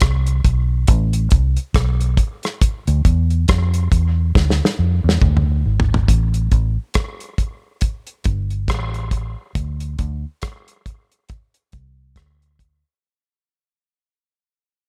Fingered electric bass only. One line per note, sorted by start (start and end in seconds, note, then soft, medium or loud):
0.02 0.43 C2 loud
0.45 0.86 B1 medium
0.89 1.30 A1 loud
1.32 1.56 C2 medium
1.75 2.16 B1 medium
2.88 3.04 D2 loud
3.05 3.46 E2 loud
3.49 3.90 F2 medium
3.92 4.33 E2 medium
4.36 4.59 D2 medium
4.79 5.03 F2 medium
5.04 5.21 E2 medium
5.22 5.63 D2 loud
5.66 6.07 G#1 medium
6.09 6.50 A1 loud
6.52 6.76 A1 loud
8.26 8.67 G1 medium
8.68 9.34 A1 medium
9.55 9.97 D2 medium
9.99 10.23 D2 medium
11.74 12.16 C2 medium
12.16 12.82 D2 medium